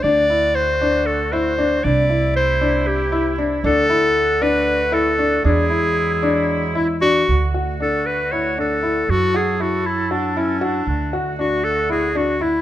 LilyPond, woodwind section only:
\new Staff \with { instrumentName = "Woodwind section" } { \time 7/8 \key d \mixolydian \tempo 4 = 116 << { <d fis'>2.~ <d fis'>8 | <c e'>2.~ <c e'>8 | <d fis'>2.~ <d fis'>8 | <fis e'>2.~ <fis e'>8 |
\key d \lydian <d fis'>2.~ <d fis'>8 | <fis a'>2.~ <fis a'>8 | <d fis'>2.~ <d fis'>8 | } \\ { a2.~ a8~ | a2.~ a8 | a2.~ a8 | gis2.~ gis8 |
a2.~ a8 | e'2.~ e'8 | a2.~ a8 | } >> }